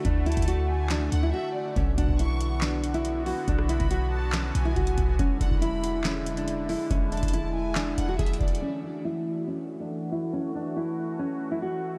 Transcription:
<<
  \new Staff \with { instrumentName = "Violin section" } { \time 4/4 \key fis \minor \tempo 4 = 140 r8 a''4 gis''4 fis''8 e''8 d''8 | r8 fis''8 cis'''4 r2 | r8 b''4 a''4 gis''4. | r8 fis''8 b''4 r2 |
r8 a''4 gis''4 fis''8 e''8 d''8 | r1 | r1 | }
  \new Staff \with { instrumentName = "Nylon-string guitar" } { \time 4/4 \key fis \minor d'8 e'8 fis'4 d'8. e'16 fis'4 | cis'8 d'8 e'4 d'8. e'8. fis'8 | d'8 e'8 fis'4 cis'8. e'16 fis'4 | cis'8 d'8 e'4 cis'8. d'8. e'8 |
cis'8 d'8 e'4 d'8. fis'16 gis'4 | cis'8 d'8 e'4 cis'8. d'8. e'8 | cis'8 d'8 e'4 cis'8. e'16 fis'4 | }
  \new Staff \with { instrumentName = "Analog synth pad" } { \time 4/4 \key fis \minor <d a fis'>1 | <d b fis'>1~ | <d b fis'>1 | <d gis e'>1~ |
<d gis e'>1 | <e a fis'>1~ | <e a fis'>1 | }
  \new Staff \with { instrumentName = "808-style bass" } { \clef bass \time 4/4 \key fis \minor d,8. d,4.~ d,16 d,8 r4 | b,,8 b,,16 b,,2. r16 | b,,8. b,,4.~ b,,16 b,,8 b,,8 b,,8 | e,,8 e,,16 e,,2. r16 |
e,,8. e,,4.~ e,,16 e,,8 e,,8 e,,8 | r1 | r1 | }
  \new DrumStaff \with { instrumentName = "Drums" } \drummode { \time 4/4 <hh bd>8 hh32 hh32 <hh bd>32 hh32 hh4 <hc hh sn>8 hh8 r4 | <hh bd>8 <hh bd>16 bd16 hh8 hh8 <hc hh sn>8 hh16 hh16 hh8 hho8 | <hh bd>16 ss16 hh16 <hh bd>16 hh4 <hc hh sn>8 hh8 <hh bd>16 hh16 <hh bd>8 | <hh bd>8 <hh bd>16 bd16 hh8 hh8 <hc hh sn>8 hh16 hh16 hh8 hho8 |
<hh bd>8 hh32 hh32 <hh bd>32 hh32 hh4 <hc hh sn>8 hh8 \tuplet 3/2 { <hh bd>16 hh16 hh16 <hh bd>16 hh16 hh16 } | r4 r4 r4 r4 | r4 r4 r4 r4 | }
>>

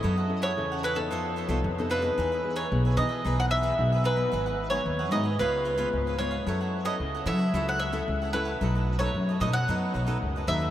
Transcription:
<<
  \new Staff \with { instrumentName = "Mandolin" } { \time 4/4 \key e \major \tempo 4 = 112 dis''8. cis''8. b'16 a'4.~ a'16 b'8~ | b'8. cis''8. dis''8. fis''16 e''4 b'8~ | b'8. cis''8. dis''8 b'4. cis''8~ | cis''8. dis''8. e''8. fis''16 e''4 b'8~ |
b'8. cis''8. dis''16 fis''4.~ fis''16 e''8 | }
  \new Staff \with { instrumentName = "Cavaquinho" } { \time 4/4 \key e \major <e' a' cis'' fis''>16 <a' cis'' fis''>8 <e' a' cis'' fis''>16 r16 <a' cis'' fis''>16 <e' a' cis'' fis''>16 <a' cis'' fis''>16 <f' a' c'' ees''>8 <f' a' c'' ees''>16 <f' a' c'' ees''>16 r16 <a' c'' ees''>16 <f' a' c'' ees''>16 <a' c'' ees''>16 | <dis' gis' b' e''>16 <gis' b' e''>8 <dis' gis' b' e''>16 r16 <gis' b' e''>16 <dis' gis' b' e''>16 <gis' b' e''>16 <dis' gis' b' e''>8 <dis' gis' b' e''>16 <dis' gis' b' e''>16 r16 <gis' b' e''>16 <dis' gis' b' e''>16 <gis' b' e''>16 | <dis' gis' b' fis''>16 <gis' b' fis''>8 <dis' gis' b' fis''>16 r16 <gis' b' fis''>16 <dis' gis' b' fis''>16 <gis' b' fis''>16 <eis' b' cis'' eis''>8 <eis' b' cis'' eis''>16 <eis' b' cis'' eis''>16 r16 <b' cis'' eis''>16 <eis' b' cis'' eis''>16 <b' cis'' eis''>16 | <e' a' cis'' fis''>16 <a' cis'' fis''>8 <e' a' cis'' fis''>16 r16 <a' cis'' fis''>16 <e' a' cis'' fis''>16 <a' cis'' fis''>16 <e' a' cis'' fis''>8 <e' a' cis'' fis''>16 <e' a' cis'' fis''>16 r16 <a' cis'' fis''>16 <e' a' cis'' fis''>16 <a' cis'' fis''>16 |
<dis' a' b' dis''>16 <a' b' dis''>8 <dis' a' b' dis''>16 r16 <a' b' dis''>16 <dis' a' b' dis''>16 <a' b' dis''>16 <dis' a' b' dis''>8 <dis' a' b' dis''>16 <dis' a' b' dis''>16 r16 <a' b' dis''>16 <dis' a' b' dis''>16 <a' b' dis''>16 | }
  \new Staff \with { instrumentName = "Nylon-string guitar" } { \time 4/4 \key e \major << { <cis' e' a'>8 <cis' e' a'>16 r16 <cis' e' a'>8 r16 <b dis' a'>4 <b ees' a'>8 <b ees' a'>8 <b ees' gis'>16~ | <b ees' gis'>8 <b dis' gis'>16 r16 <b dis' gis'>8. r16 <b dis' gis'>4 <b dis' gis'>8 r16 <fis b dis'>16~ | <fis b dis'>8 r16 <fis b dis'>8. <fis b dis'>16 r16 <gis b eis'>8. <gis b eis'>8. <gis b eis'>16 r16 | <cis' e' a'>8. <cis' e' a'>8. <cis' e' a'>16 r16 <cis' e' a'>8 r16 <cis' e' a'>8. <cis' e' a'>8 |
<fis a dis'>8. <fis a dis'>8. <fis a dis'>16 r16 <fis a dis'>8. <fis a dis'>8. <fis a dis'>8 | } \\ { fis4 cis4 f4 c4 | e4 b,4 e4 b,4 | gis,4 dis4 cis4 gis,4 | fis4 cis4 fis4 cis4 |
b,4 fis,4 b,4 fis,4 | } >> }
  \new Staff \with { instrumentName = "Upright bass" } { \clef bass \time 4/4 \key e \major fis,4 e,4 f,8. c,16 f,4 | e,4 b,,8 e8 b,,4 b,,4 | gis,,4 dis,8 gis,8 cis,4 cis,4 | fis,4 cis,8 fis8 cis,4 cis,4 |
b,,4 fis,8 b,8 fis,8 b,,8 cis,8 dis,8 | }
>>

